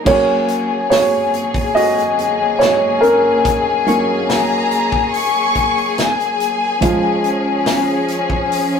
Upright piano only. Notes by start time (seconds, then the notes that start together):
0.05 F#3 A#3 C#4 F#4 C#5
0.90 F#4 C#5
1.75 F#4 D#5
2.59 F#4 C#5
3.01 C#4 A#4
3.87 F#3 A#3 C#4
6.81 F3 G#3 F4